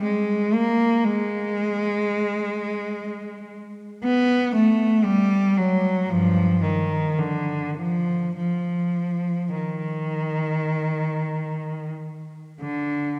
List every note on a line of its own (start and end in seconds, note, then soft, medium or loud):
0.03 0.54 G#3 medium
0.54 1.05 A#3 medium
1.05 3.54 G#3 medium
4.04 4.50 B3 medium
4.55 5.06 A3 medium
5.05 5.57 G3 medium
5.57 6.10 F#3 medium
6.09 6.60 G2 medium
6.09 6.64 F3 medium
6.62 7.19 D#3 medium
7.19 7.77 D3 medium
7.78 8.35 F3 medium
8.36 9.52 F3 medium
9.56 11.93 D#3 soft
12.61 13.20 D3 medium